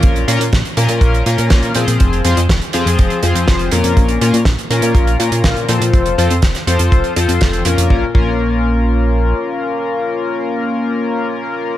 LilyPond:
<<
  \new Staff \with { instrumentName = "Analog polysynth" } { \time 4/4 \key bes \minor \tempo 4 = 122 <bes, bes des' f' bes'>8 <bes, bes des' f' bes'>8 r8 <bes, bes des' f' bes'>4 <bes, bes des' f' bes'>4 <f c' f' aes' c''>8~ | <f c' f' aes' c''>8 <f c' f' aes' c''>8 r8 <f c' f' aes' c''>4 <f c' f' aes' c''>4 <bes, bes des' f' bes'>8~ | <bes, bes des' f' bes'>8 <bes, bes des' f' bes'>8 r8 <bes, bes des' f' bes'>4 <bes, bes des' f' bes'>4 <f c' f' a' c''>8~ | <f c' f' a' c''>8 <f c' f' a' c''>8 r8 <f c' f' a' c''>4 <f c' f' a' c''>4 <bes, bes des' f' bes'>8 |
<bes des' f' bes'>8 <bes des' f' bes'>2.~ <bes des' f' bes'>8~ | <bes des' f' bes'>1 | }
  \new Staff \with { instrumentName = "Analog synth bass" } { \clef bass \time 4/4 \key bes \minor bes,,8 bes,16 bes,16 bes,,16 r16 bes,16 bes,16 bes,,8 bes,16 bes,16 bes,,16 r16 bes,16 bes,16 | f,,8 f,16 f,16 f,,16 r16 f,16 f,16 f,,16 r16 f,16 f,16 f,,8 f,16 f,16 | bes,,8 bes,16 bes,16 bes,,16 r16 bes,16 bes,16 bes,,8 bes,16 bes,16 bes,,16 r16 bes,16 bes,16 | f,,8 f,16 f,16 f,,16 r16 f,16 f,16 f,,16 r16 f,16 f,16 f,,8 f,16 f,16 |
bes,,16 r16 bes,,2~ bes,,8 r4 | r1 | }
  \new DrumStaff \with { instrumentName = "Drums" } \drummode { \time 4/4 <hh bd>16 hh16 hh16 hh16 <hh bd sn>16 hh16 hh16 hh16 <hh bd>16 hh16 hh16 hh16 <hh bd sn>16 hh16 hh16 hh16 | <hh bd>16 hh16 hh16 hh16 <hh bd sn>16 hh16 hh16 hh16 <hh bd>16 hh16 hh16 hh16 <hh bd sn>16 hh16 hh16 hh16 | <hh bd>16 hh16 hh16 hh16 <hh bd sn>16 hh16 hh16 hh16 <hh bd>16 hh16 hh16 hh16 <hh bd sn>16 hh16 hh16 hh16 | <hh bd>16 hh16 hh16 hh16 <hh bd sn>16 <hh sn>16 hh16 hh16 <hh bd>16 hh16 hh16 hh16 <hh bd sn>16 hh16 hh16 hh16 |
bd8 bd8 r4 r4 r4 | r4 r4 r4 r4 | }
>>